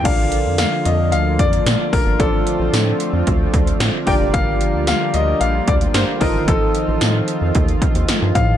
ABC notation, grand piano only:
X:1
M:4/4
L:1/8
Q:1/4=112
K:Bb
V:1 name="Grand piano"
f2 f e f d2 B | A6 z g | f2 f e f d c B | A6 z f |]